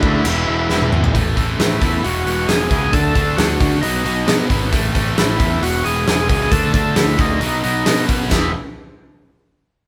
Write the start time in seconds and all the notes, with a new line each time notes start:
Already playing: D3 A3 D4 F#4
0.01 D2 D3 A3 D4 E4, kick
0.24 E1 E2 B2 E3 G#3 B3, crash
0.28 E4
0.47 E1 E2 B2 E3
0.70 E1 E2 B2 E3, snare
0.82 high tom
0.92 G#1 E2 B2 E3, mid tom
1.04 floor tom
1.14 A1 A2 E3 A3, kick, open hi-hat
1.35 A1 A2 E3 A3, kick, open hi-hat
1.58 A1 A2 E3 A3 E4, snare, open hi-hat
1.81 E2 A2 E3 A3, kick, open hi-hat
2.03 E1 E2 B2 E3 F#4, open hi-hat
2.25 E1 E2 B2 E3, open hi-hat
2.47 E1 E2 B2 E3 G#4, snare, open hi-hat
2.70 C#2 E2 B2 E3, kick, open hi-hat
2.92 D2 D3 A3 D4 A4, kick, open hi-hat
3.14 D2 D3 A3 D4, kick, open hi-hat
3.36 D2 D3 A3 D4 F#4, snare, open hi-hat
3.60 D2 D3 A3 D4, kick, open hi-hat
3.81 B1 B2 F#3 B3 D#4, open hi-hat
4.05 B1 B2 F#3 B3, open hi-hat
4.27 B2 F#3 B3, snare, open hi-hat
4.50 G#1 B2 F#3 B3, kick, open hi-hat
4.72 A1 A2 E3 A3, kick, open hi-hat
4.93 A1 A2 E3 A3, kick, open hi-hat
5.16 A1 A2 E3 A3 E4, snare, open hi-hat
5.38 E2 A2 E3 A3, kick, open hi-hat
5.61 E1 E2 B2 E3 F#4, open hi-hat
5.84 E1 E2 B2 E3 G#4, open hi-hat
6.07 E1 E2 B2 E3 G#4, snare, open hi-hat
6.29 C#2 E2 B2 E3 G#4, kick, open hi-hat
6.51 D2 D3 A3 D4 A4, kick, open hi-hat
6.74 D2 D3 A3 D4 A4, kick, open hi-hat
6.96 D2 D3 A3 D4 E4, snare, open hi-hat
7.18 D2 D3 A3 D4 D#4, kick, open hi-hat
7.41 B1 B2 F#3 B3, open hi-hat
7.63 B1 B2 F#3 B3, open hi-hat
7.86 B2 F#3 B3, snare, open hi-hat
8.08 B1 B2 F#3 B3, kick, open hi-hat
8.31 E1 E2 B2 E3 E4 G#4, kick, snare, crash